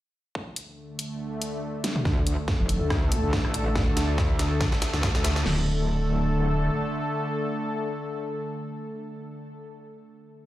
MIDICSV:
0, 0, Header, 1, 4, 480
1, 0, Start_track
1, 0, Tempo, 425532
1, 397, Time_signature, 4, 2, 24, 8
1, 11799, End_track
2, 0, Start_track
2, 0, Title_t, "Analog synth pad"
2, 0, Program_c, 0, 89
2, 396, Note_on_c, 0, 38, 76
2, 397, Note_on_c, 0, 50, 70
2, 397, Note_on_c, 0, 57, 83
2, 2297, Note_off_c, 0, 38, 0
2, 2297, Note_off_c, 0, 50, 0
2, 2297, Note_off_c, 0, 57, 0
2, 2316, Note_on_c, 0, 57, 73
2, 2317, Note_on_c, 0, 50, 78
2, 2317, Note_on_c, 0, 69, 86
2, 6118, Note_off_c, 0, 50, 0
2, 6118, Note_off_c, 0, 57, 0
2, 6118, Note_off_c, 0, 69, 0
2, 6155, Note_on_c, 0, 50, 83
2, 6156, Note_on_c, 0, 69, 93
2, 6157, Note_on_c, 0, 57, 76
2, 10853, Note_off_c, 0, 50, 0
2, 10854, Note_off_c, 0, 57, 0
2, 10854, Note_off_c, 0, 69, 0
2, 11799, End_track
3, 0, Start_track
3, 0, Title_t, "Wobble bass"
3, 0, Program_c, 1, 39
3, 2316, Note_on_c, 1, 38, 93
3, 2667, Note_off_c, 1, 38, 0
3, 2927, Note_on_c, 1, 29, 95
3, 3146, Note_off_c, 1, 29, 0
3, 3167, Note_on_c, 1, 38, 92
3, 3626, Note_off_c, 1, 38, 0
3, 3647, Note_on_c, 1, 38, 92
3, 3866, Note_off_c, 1, 38, 0
3, 3887, Note_on_c, 1, 33, 97
3, 4346, Note_off_c, 1, 33, 0
3, 4366, Note_on_c, 1, 38, 94
3, 5306, Note_off_c, 1, 38, 0
3, 5567, Note_on_c, 1, 38, 97
3, 5787, Note_off_c, 1, 38, 0
3, 5807, Note_on_c, 1, 38, 98
3, 6138, Note_off_c, 1, 38, 0
3, 6156, Note_on_c, 1, 26, 95
3, 7551, Note_off_c, 1, 26, 0
3, 11799, End_track
4, 0, Start_track
4, 0, Title_t, "Drums"
4, 396, Note_on_c, 9, 36, 106
4, 509, Note_off_c, 9, 36, 0
4, 636, Note_on_c, 9, 42, 74
4, 749, Note_off_c, 9, 42, 0
4, 1116, Note_on_c, 9, 42, 76
4, 1229, Note_off_c, 9, 42, 0
4, 1597, Note_on_c, 9, 42, 75
4, 1709, Note_off_c, 9, 42, 0
4, 2076, Note_on_c, 9, 38, 59
4, 2076, Note_on_c, 9, 42, 77
4, 2189, Note_off_c, 9, 38, 0
4, 2189, Note_off_c, 9, 42, 0
4, 2208, Note_on_c, 9, 47, 69
4, 2316, Note_on_c, 9, 36, 91
4, 2316, Note_on_c, 9, 38, 47
4, 2321, Note_off_c, 9, 47, 0
4, 2429, Note_off_c, 9, 36, 0
4, 2429, Note_off_c, 9, 38, 0
4, 2556, Note_on_c, 9, 42, 78
4, 2669, Note_off_c, 9, 42, 0
4, 2796, Note_on_c, 9, 36, 94
4, 2796, Note_on_c, 9, 38, 50
4, 2909, Note_off_c, 9, 36, 0
4, 2909, Note_off_c, 9, 38, 0
4, 3036, Note_on_c, 9, 42, 76
4, 3149, Note_off_c, 9, 42, 0
4, 3276, Note_on_c, 9, 36, 94
4, 3276, Note_on_c, 9, 37, 72
4, 3276, Note_on_c, 9, 38, 57
4, 3389, Note_off_c, 9, 36, 0
4, 3389, Note_off_c, 9, 37, 0
4, 3389, Note_off_c, 9, 38, 0
4, 3516, Note_on_c, 9, 42, 78
4, 3629, Note_off_c, 9, 42, 0
4, 3756, Note_on_c, 9, 36, 96
4, 3756, Note_on_c, 9, 38, 64
4, 3869, Note_off_c, 9, 36, 0
4, 3869, Note_off_c, 9, 38, 0
4, 3887, Note_on_c, 9, 37, 50
4, 3995, Note_on_c, 9, 42, 81
4, 4000, Note_off_c, 9, 37, 0
4, 4108, Note_off_c, 9, 42, 0
4, 4236, Note_on_c, 9, 36, 97
4, 4236, Note_on_c, 9, 38, 72
4, 4349, Note_off_c, 9, 36, 0
4, 4349, Note_off_c, 9, 38, 0
4, 4475, Note_on_c, 9, 38, 76
4, 4475, Note_on_c, 9, 42, 76
4, 4588, Note_off_c, 9, 38, 0
4, 4588, Note_off_c, 9, 42, 0
4, 4715, Note_on_c, 9, 38, 82
4, 4716, Note_on_c, 9, 36, 98
4, 4828, Note_off_c, 9, 38, 0
4, 4829, Note_off_c, 9, 36, 0
4, 4956, Note_on_c, 9, 38, 87
4, 4956, Note_on_c, 9, 42, 80
4, 5068, Note_off_c, 9, 38, 0
4, 5068, Note_off_c, 9, 42, 0
4, 5195, Note_on_c, 9, 38, 89
4, 5196, Note_on_c, 9, 36, 99
4, 5308, Note_off_c, 9, 38, 0
4, 5309, Note_off_c, 9, 36, 0
4, 5327, Note_on_c, 9, 38, 83
4, 5436, Note_off_c, 9, 38, 0
4, 5436, Note_on_c, 9, 38, 95
4, 5436, Note_on_c, 9, 42, 78
4, 5548, Note_off_c, 9, 38, 0
4, 5548, Note_off_c, 9, 42, 0
4, 5567, Note_on_c, 9, 38, 86
4, 5675, Note_off_c, 9, 38, 0
4, 5675, Note_on_c, 9, 38, 101
4, 5677, Note_on_c, 9, 36, 99
4, 5788, Note_off_c, 9, 38, 0
4, 5789, Note_off_c, 9, 36, 0
4, 5807, Note_on_c, 9, 38, 90
4, 5916, Note_off_c, 9, 38, 0
4, 5916, Note_on_c, 9, 38, 108
4, 5916, Note_on_c, 9, 42, 82
4, 6029, Note_off_c, 9, 38, 0
4, 6029, Note_off_c, 9, 42, 0
4, 6048, Note_on_c, 9, 38, 99
4, 6157, Note_off_c, 9, 38, 0
4, 6157, Note_on_c, 9, 38, 105
4, 6157, Note_on_c, 9, 49, 90
4, 6270, Note_off_c, 9, 38, 0
4, 6270, Note_off_c, 9, 49, 0
4, 11799, End_track
0, 0, End_of_file